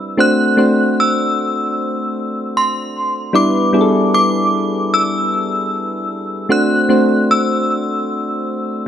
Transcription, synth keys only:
0.17 A3 C4 D4 F#4 C5
0.57 A3 C4 D4 F#4 C5
3.33 G3 B3 D4 E4 B4
3.73 G3 B3 D4 E4 G#4
3.81 A4
6.49 A3 C4 D4 F#4 C5
6.89 A3 C4 D4 F#4 C5

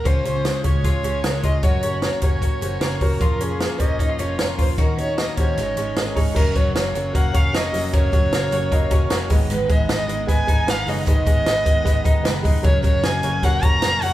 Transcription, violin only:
0.06 C5
0.66 C#5
1.45 D#5
1.64 C#5
2.03 C#5
2.23 C#5
3.02 A#4
3.43 G#4
3.80 D#5
4.20 C#5
4.39 C#5
4.61 C5
4.80 A#4
5.00 C#5
5.19 D#5
5.40 C#5
6.36 A#4
6.56 C#5
6.75 C#5
7.15 F#5
7.36 F5
7.56 D#5
7.96 C#5
9.51 B4
9.71 D#5
9.92 D#5
10.29 G#5
10.69 F5
10.89 D#5
11.07 D#5
12.65 C#5
12.83 C#5
13.04 G#5
13.43 F#5
13.63 A#5
14.02 F#5

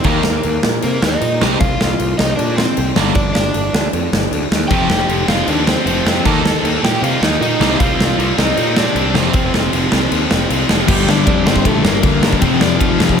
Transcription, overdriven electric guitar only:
0.05 A#3 A#4
0.83 A#3 A#4
1.02 D#4 D#5
1.60 F4 F5
2.18 D#4 D#5
2.36 D4 D5
2.56 C4 C5
3.15 D4 D5
3.33 D4 D5
4.68 G4 G5
5.28 F4 F5
5.49 D4 D5
5.66 C4 C5
5.87 C4 C5
6.26 A4 A5
6.84 G4 G5
7.04 F4 F5
7.22 D#4 D#5
7.41 D#4 D#5
7.79 F4 F5
8.38 D#4 D#5
8.78 D4 D5
9.16 C4 C5
10.89 G3 G4
11.09 D4 D5
11.26 D4 D5
11.46 C4 C5
11.66 A3 A4
11.83 A#3 A#4
12.41 C4 C5
12.60 D4 D5
12.78 F3 F4

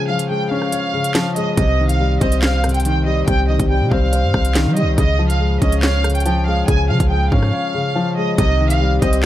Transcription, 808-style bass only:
1.57 C2
2.21 C2
3.28 C2
3.59 C2
3.81 C3
3.91 C2
4.23 G2
4.34 C2
4.66 G3
4.82 C2
4.98 C#2
5.62 C#2
6.68 C#2
6.89 C#3
7.00 C#2
7.32 G#2
8.38 C2
9.02 C2

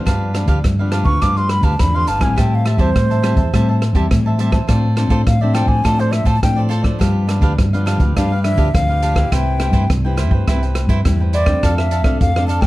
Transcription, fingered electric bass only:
0.07 G2
0.46 D2
0.64 G2
1.03 D2
1.22 G2
1.61 D2
1.80 E2
2.08 G1
2.19 A1
2.38 A2
2.77 E2
2.96 A2
3.35 E2
3.54 A2
3.93 E2
4.11 A2
4.69 A2
5.08 A2
5.27 A2
5.66 A2
5.85 A2
6.24 A2
6.43 A2
7.01 G2
7.40 D2
7.59 G2
7.98 D2
8.17 G2
8.56 D2
8.75 D2
9.32 C2
9.71 G2
9.90 C2
10.29 G2
10.48 C2
10.87 G2
11.06 E2
11.63 F2
12.02 C2
12.21 F2

